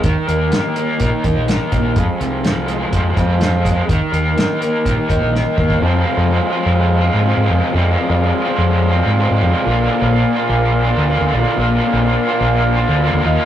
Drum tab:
HH |x-x-x-x-x-x-x-x-|x-x-x-x-x-x-x-x-|x-x-x-x-x-x-----|----------------|
SD |----o-------o---|----o-------o---|----o-------o---|----------------|
BD |o-------o-o---o-|o-------o-o---o-|o-------o-o---oo|----------------|

HH |----------------|----------------|----------------|
SD |----------------|----------------|----------------|
BD |----------------|----------------|----------------|